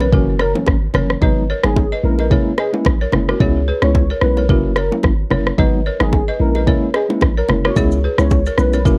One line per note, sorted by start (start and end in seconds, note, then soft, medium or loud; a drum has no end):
0.00 0.14 B1 medium
0.00 0.08 A#4 medium
0.00 0.07 C#5 medium
0.00 impact medium
0.00 high bongo soft
0.12 0.53 F#1 loud
0.12 0.34 E3 medium
0.12 0.34 F#3 medium
0.12 0.34 A#3 medium
0.12 0.34 C#4 loud
0.12 0.21 F#4 medium
0.12 0.21 A#4 medium
0.12 kick loud
0.12 low conga medium
0.39 0.53 A#4 medium
0.39 0.49 A#4 medium
0.39 0.48 C#5 medium
0.39 cross-stick medium
0.39 high bongo medium
0.54 0.74 E3 medium
0.54 0.75 F#3 medium
0.54 0.75 A#3 medium
0.54 0.75 C#4 medium
0.54 low bongo medium
0.66 0.88 G#1 loud
0.66 kick loud
0.66 cross-stick medium
0.66 high bongo medium
0.94 1.15 F#1 medium
0.94 1.15 E3 medium
0.94 1.16 F#3 medium
0.94 1.16 A#3 medium
0.94 1.16 C#4 medium
0.94 1.03 A#4 medium
0.94 1.03 C#5 medium
0.94 cross-stick medium
0.94 low bongo medium
0.94 low conga medium
1.10 cross-stick medium
1.21 1.53 G#1 loud
1.21 1.43 F#3 medium
1.21 1.43 G#3 medium
1.21 1.43 B3 medium
1.21 1.43 D#4 loud
1.21 1.30 B4 medium
1.21 1.30 D#5 loud
1.21 kick loud
1.21 low conga medium
1.50 1.58 A#4 medium
1.50 1.57 C#5 medium
1.64 1.93 G#1 medium
1.64 1.84 F#3 medium
1.64 1.84 G#3 medium
1.64 1.84 B3 medium
1.64 1.84 D#4 medium
1.64 1.88 G#4 medium
1.64 cross-stick loud
1.64 low bongo medium
1.76 kick medium
1.76 high bongo medium
1.92 1.99 B4 medium
1.92 1.98 D#5 medium
2.03 2.35 A#1 loud
2.03 2.25 G#3 medium
2.03 2.25 A#3 medium
2.03 2.25 C#4 medium
2.03 2.25 E4 medium
2.03 2.27 A#4 medium
2.19 2.26 B4 medium
2.19 2.25 D#5 medium
2.19 high bongo soft
2.30 2.52 G#3 medium
2.30 2.52 A#3 medium
2.30 2.52 C#4 medium
2.30 2.52 E4 loud
2.30 2.40 A#4 medium
2.30 2.39 C#5 medium
2.30 kick loud
2.30 low conga medium
2.58 2.71 G#4 medium
2.58 2.67 B4 medium
2.58 2.66 D#5 medium
2.58 cross-stick medium
2.58 high bongo medium
2.73 2.93 G#3 medium
2.73 2.93 A#3 medium
2.73 2.93 C#4 medium
2.73 2.93 E4 medium
2.73 low bongo medium
2.85 3.06 A#1 loud
2.85 kick loud
2.85 cross-stick loud
2.85 high bongo medium
3.01 3.08 A#4 medium
3.01 3.07 C#5 medium
3.12 3.33 F#1 medium
3.12 3.34 G#3 medium
3.12 3.34 A#3 medium
3.12 3.34 C#4 medium
3.12 3.34 E4 medium
3.12 cross-stick medium
3.12 low bongo medium
3.12 low conga medium
3.28 3.35 F#4 medium
3.28 3.34 A#4 medium
3.28 cross-stick medium
3.40 3.71 C#2 loud
3.40 3.61 G#3 medium
3.40 3.61 B3 medium
3.40 3.61 C#4 medium
3.40 3.61 E4 loud
3.40 3.49 G#4 medium
3.40 3.48 C#5 loud
3.40 kick loud
3.40 low conga medium
3.68 3.76 G#4 medium
3.68 3.75 B4 medium
3.82 4.12 C#2 medium
3.82 4.02 G#3 medium
3.82 4.02 B3 medium
3.82 4.02 C#4 medium
3.82 4.02 E4 medium
3.82 4.06 C#5 medium
3.82 cross-stick loud
3.82 low bongo medium
3.95 kick medium
3.95 high bongo medium
4.10 4.17 A#4 medium
4.10 4.16 C#5 medium
4.21 4.51 B1 medium
4.21 4.43 G#3 medium
4.21 4.43 B3 medium
4.21 4.43 C#4 medium
4.21 4.43 E4 medium
4.21 4.46 B4 medium
4.21 cross-stick medium
4.37 4.44 A#4 medium
4.37 4.43 C#5 medium
4.37 high bongo soft
4.49 4.90 F#1 loud
4.49 4.70 F#3 medium
4.49 4.70 A#3 medium
4.49 4.70 C#4 medium
4.49 4.70 E4 loud
4.49 4.58 F#4 medium
4.49 4.57 A#4 medium
4.49 kick loud
4.49 low conga medium
4.76 4.90 A#4 medium
4.76 4.85 A#4 medium
4.76 4.85 C#5 medium
4.76 cross-stick medium
4.76 high bongo medium
4.91 5.11 F#3 medium
4.91 5.11 A#3 medium
4.91 5.11 C#4 medium
4.91 5.11 E4 medium
4.91 low bongo medium
5.03 5.24 G#1 medium
5.03 kick medium
5.03 cross-stick medium
5.03 high bongo medium
5.30 5.51 F#1 medium
5.30 5.52 F#3 medium
5.30 5.52 A#3 medium
5.30 5.52 C#4 medium
5.30 5.52 E4 medium
5.30 5.40 A#4 medium
5.30 5.39 C#5 medium
5.30 cross-stick medium
5.30 low bongo medium
5.30 low conga medium
5.47 cross-stick medium
5.58 5.90 G#1 loud
5.58 5.79 F#3 medium
5.58 5.79 G#3 medium
5.58 5.79 B3 medium
5.58 5.79 D#4 loud
5.58 5.67 B4 medium
5.58 5.66 D#5 loud
5.58 kick loud
5.58 low conga medium
5.86 5.94 A#4 medium
5.86 5.94 C#5 medium
6.00 6.30 G#1 loud
6.00 6.20 F#3 medium
6.00 6.20 G#3 medium
6.00 6.20 B3 medium
6.00 6.20 D#4 medium
6.00 6.24 G#4 medium
6.00 cross-stick loud
6.00 low bongo medium
6.13 kick medium
6.13 high bongo medium
6.28 6.35 B4 medium
6.28 6.34 D#5 medium
6.39 6.71 A#1 loud
6.39 6.61 G#3 medium
6.39 6.61 A#3 medium
6.39 6.61 C#4 medium
6.39 6.61 E4 medium
6.39 6.64 A#4 medium
6.55 6.62 B4 medium
6.55 6.62 D#5 medium
6.55 high bongo soft
6.67 6.88 G#3 medium
6.67 6.88 A#3 medium
6.67 6.88 C#4 medium
6.67 6.88 E4 loud
6.67 6.76 A#4 medium
6.67 6.75 C#5 medium
6.67 kick loud
6.67 low conga medium
6.94 7.08 G#4 medium
6.94 7.03 B4 medium
6.94 7.03 D#5 medium
6.94 cross-stick medium
6.94 high bongo medium
7.09 7.29 G#3 medium
7.09 7.29 A#3 medium
7.09 7.29 C#4 medium
7.09 7.29 E4 medium
7.09 low bongo medium
7.21 7.42 A#1 loud
7.21 kick loud
7.21 cross-stick loud
7.21 high bongo medium
7.37 7.48 A#4 medium
7.37 7.44 A#4 medium
7.37 7.43 C#5 medium
7.48 7.69 F#1 medium
7.48 7.70 G#3 medium
7.48 7.70 A#3 medium
7.48 7.70 C#4 medium
7.48 7.70 E4 medium
7.48 cross-stick medium
7.48 low bongo medium
7.48 low conga medium
7.65 7.71 F#4 medium
7.65 7.71 A#4 medium
7.65 7.75 C#5 medium
7.65 cross-stick medium
7.76 8.08 C#2 loud
7.76 7.97 G#3 medium
7.76 7.97 B3 medium
7.76 7.97 C#4 medium
7.76 7.98 E4 loud
7.76 7.85 G#4 medium
7.76 7.84 C#5 loud
7.76 kick loud
7.76 low conga medium
7.76 shaker medium
7.91 shaker medium
8.04 8.12 G#4 medium
8.04 8.12 B4 medium
8.18 8.48 C#2 medium
8.18 8.38 G#3 medium
8.18 8.38 B3 medium
8.18 8.38 C#4 medium
8.18 8.38 E4 medium
8.18 8.42 C#5 medium
8.18 cross-stick loud
8.18 low bongo medium
8.18 shaker soft
8.31 kick medium
8.31 high bongo medium
8.31 shaker medium
8.46 8.53 A#4 medium
8.46 8.53 C#5 medium
8.46 shaker medium
8.58 8.87 B1 medium
8.58 8.79 G#3 medium
8.58 8.79 B3 medium
8.58 8.79 C#4 medium
8.58 8.79 E4 medium
8.58 8.82 B4 medium
8.58 cross-stick medium
8.58 shaker medium
8.73 8.80 A#4 medium
8.73 8.80 C#5 medium
8.73 high bongo soft
8.73 shaker soft
8.85 8.98 F#1 loud
8.85 8.98 F#3 medium
8.85 8.98 A#3 medium
8.85 8.98 C#4 medium
8.85 8.98 E4 loud
8.85 8.94 F#4 medium
8.85 8.93 A#4 medium
8.85 kick loud
8.85 low conga medium
8.85 shaker medium